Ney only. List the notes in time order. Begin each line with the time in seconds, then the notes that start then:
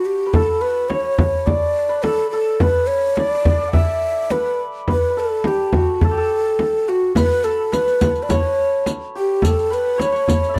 0.05 G4
0.34 A4
0.61 B4
0.89 C#5
1.47 D5
2.03 A4
2.31 A4
2.61 B4
2.87 C#5
3.16 C#5
3.27 D5
3.73 E5
4.31 B4
4.92 B4
5.19 A4
5.48 G4
5.74 F#4
6.03 A4
6.89 F#4
7.16 B4
7.44 A4
7.73 B4
8.23 D5
8.29 C#5
9.18 G4
9.46 A4
9.74 B4
10.01 C#5